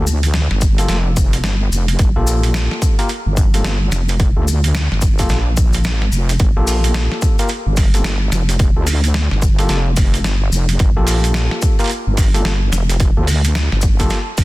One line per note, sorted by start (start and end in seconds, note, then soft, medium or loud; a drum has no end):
0.00 0.48 D2 loud
0.07 maracas medium
0.23 closed hi-hat medium
0.23 maracas medium
0.34 snare loud
0.34 closed hi-hat medium
0.34 maracas soft
0.51 0.87 G1 loud
0.51 snare soft
0.61 kick loud
0.61 maracas medium
0.78 0.97 A#3 medium
0.78 0.97 F4 medium
0.78 0.97 G4 medium
0.78 0.97 A4 loud
0.78 closed hi-hat medium
0.78 maracas medium
0.89 1.42 F1 loud
0.89 snare medium
0.89 closed hi-hat medium
0.89 maracas soft
1.16 kick loud
1.16 maracas loud
1.33 closed hi-hat medium
1.33 maracas medium
1.44 1.70 G1 medium
1.44 snare loud
1.44 closed hi-hat medium
1.44 maracas soft
1.72 1.98 F1 medium
1.72 maracas medium
1.88 closed hi-hat medium
1.88 maracas medium
1.99 2.14 G1 loud
1.99 kick loud
1.99 closed hi-hat medium
1.99 maracas soft
2.16 2.69 A#1 loud
2.16 2.95 A#3 medium
2.16 2.95 F4 medium
2.16 2.95 G4 medium
2.16 2.95 A4 loud
2.27 maracas loud
2.43 closed hi-hat medium
2.43 maracas medium
2.54 snare loud
2.54 closed hi-hat medium
2.54 maracas soft
2.71 snare soft
2.82 kick loud
2.82 maracas medium
2.99 3.08 A#3 loud
2.99 3.08 F4 medium
2.99 3.08 G4 medium
2.99 3.08 A#4 loud
2.99 closed hi-hat medium
2.99 maracas medium
3.09 closed hi-hat medium
3.09 maracas soft
3.26 3.63 G1 loud
3.37 kick loud
3.37 maracas medium
3.54 3.72 A#3 medium
3.54 3.72 F4 medium
3.54 3.72 G4 medium
3.54 3.72 A4 medium
3.54 closed hi-hat medium
3.54 maracas medium
3.64 3.90 G1 medium
3.64 snare loud
3.64 closed hi-hat medium
3.64 maracas soft
3.91 4.33 F1 loud
3.91 snare medium
3.91 maracas medium
4.08 closed hi-hat medium
4.08 maracas medium
4.19 kick loud
4.19 closed hi-hat soft
4.19 maracas soft
4.36 4.89 D2 loud
4.36 4.46 A#3 medium
4.36 4.46 F4 medium
4.36 4.46 G4 medium
4.36 4.46 A4 medium
4.48 maracas loud
4.64 closed hi-hat medium
4.64 maracas medium
4.75 snare loud
4.75 closed hi-hat medium
4.75 maracas soft
4.92 5.28 G1 loud
4.92 snare soft
5.01 kick loud
5.01 maracas medium
5.18 5.37 A#3 medium
5.18 5.37 F4 medium
5.18 5.37 G4 medium
5.18 5.37 A4 loud
5.18 kick medium
5.18 closed hi-hat medium
5.18 maracas medium
5.29 5.86 A#1 loud
5.29 snare medium
5.29 closed hi-hat medium
5.29 maracas soft
5.57 kick loud
5.57 maracas loud
5.73 closed hi-hat medium
5.73 maracas medium
5.84 6.10 A1 loud
5.84 snare loud
5.84 closed hi-hat medium
5.84 maracas soft
6.02 snare soft
6.12 6.38 F1 loud
6.12 maracas medium
6.29 closed hi-hat medium
6.29 maracas medium
6.39 6.54 G1 loud
6.39 kick loud
6.39 closed hi-hat soft
6.39 maracas soft
6.56 7.09 A#1 loud
6.56 7.35 A#3 medium
6.56 7.35 F4 medium
6.56 7.35 G4 medium
6.56 7.35 A4 loud
6.67 open hi-hat medium
6.67 maracas medium
6.84 closed hi-hat medium
6.84 maracas medium
6.94 snare loud
6.94 closed hi-hat medium
6.94 maracas soft
7.12 snare soft
7.22 kick loud
7.22 maracas medium
7.39 7.49 A#3 medium
7.39 7.49 F4 medium
7.39 7.49 G4 medium
7.39 7.49 A#4 loud
7.39 closed hi-hat medium
7.39 maracas medium
7.48 closed hi-hat medium
7.48 maracas soft
7.66 8.03 G1 loud
7.77 kick loud
7.77 open hi-hat medium
7.77 maracas medium
7.94 8.12 A#3 medium
7.94 8.13 F4 medium
7.94 8.13 G4 medium
7.94 8.13 A4 medium
7.94 closed hi-hat medium
7.94 maracas medium
8.04 8.30 G1 loud
8.04 snare loud
8.04 closed hi-hat soft
8.04 maracas soft
8.32 8.74 F1 loud
8.32 snare soft
8.32 maracas medium
8.49 closed hi-hat medium
8.49 maracas soft
8.59 kick loud
8.59 closed hi-hat soft
8.59 maracas soft
8.76 9.29 D2 loud
8.76 8.86 A#3 medium
8.76 8.86 F4 medium
8.76 8.86 G4 medium
8.76 8.86 A4 medium
8.87 open hi-hat medium
8.87 maracas medium
9.04 closed hi-hat medium
9.04 maracas soft
9.14 snare loud
9.14 closed hi-hat medium
9.14 maracas soft
9.31 9.68 G1 loud
9.31 snare soft
9.42 kick loud
9.42 maracas medium
9.59 9.77 A#3 medium
9.59 9.77 F4 medium
9.59 9.77 G4 medium
9.59 9.77 A4 loud
9.59 closed hi-hat medium
9.59 maracas soft
9.69 10.23 F1 loud
9.69 snare medium
9.69 closed hi-hat soft
9.69 maracas soft
9.96 kick loud
9.96 open hi-hat medium
9.96 maracas loud
10.14 closed hi-hat medium
10.14 maracas soft
10.24 10.51 G1 loud
10.24 snare loud
10.24 closed hi-hat medium
10.24 maracas soft
10.52 10.78 F1 loud
10.52 maracas medium
10.69 closed hi-hat medium
10.69 maracas soft
10.79 10.94 G1 loud
10.79 kick loud
10.79 closed hi-hat medium
10.79 maracas soft
10.96 11.49 A#1 loud
10.96 11.75 A#3 medium
10.96 11.75 F4 medium
10.96 11.75 G4 medium
10.96 11.75 A4 loud
11.07 open hi-hat medium
11.07 maracas medium
11.24 closed hi-hat medium
11.24 maracas medium
11.34 snare loud
11.34 closed hi-hat medium
11.34 maracas soft
11.51 snare soft
11.62 kick loud
11.62 maracas medium
11.79 11.89 A#3 loud
11.79 11.89 F4 medium
11.79 11.89 G4 medium
11.79 11.89 A#4 loud
11.79 closed hi-hat soft
11.79 maracas soft
11.81 closed hi-hat soft
11.84 closed hi-hat soft
11.86 closed hi-hat soft
11.88 closed hi-hat medium
11.90 closed hi-hat medium
11.90 maracas soft
12.07 12.43 G1 loud
12.17 kick loud
12.17 open hi-hat medium
12.17 maracas loud
12.34 12.53 A#3 medium
12.34 12.53 F4 medium
12.34 12.53 G4 medium
12.34 12.53 A4 medium
12.34 closed hi-hat medium
12.34 maracas soft
12.45 12.71 G1 loud
12.45 snare loud
12.45 closed hi-hat medium
12.45 maracas soft
12.72 13.14 F1 loud
12.72 snare medium
12.72 maracas medium
12.89 closed hi-hat medium
12.89 maracas soft
13.00 kick loud
13.00 closed hi-hat medium
13.00 maracas soft
13.17 13.70 D2 loud
13.17 13.27 A#3 medium
13.17 13.27 F4 medium
13.17 13.27 G4 medium
13.17 13.27 A4 medium
13.27 open hi-hat medium
13.27 maracas medium
13.44 closed hi-hat medium
13.44 maracas medium
13.55 snare loud
13.55 closed hi-hat medium
13.55 maracas soft
13.72 14.09 G1 loud
13.72 snare soft
13.81 kick loud
13.81 maracas medium
13.99 14.18 A#3 medium
13.99 14.18 F4 medium
13.99 14.18 G4 medium
13.99 14.18 A4 loud
13.99 kick medium
13.99 closed hi-hat medium
13.99 maracas soft
14.10 snare medium
14.10 closed hi-hat medium
14.10 maracas soft
14.37 14.44 G1 loud
14.37 kick loud
14.37 open hi-hat medium
14.37 maracas medium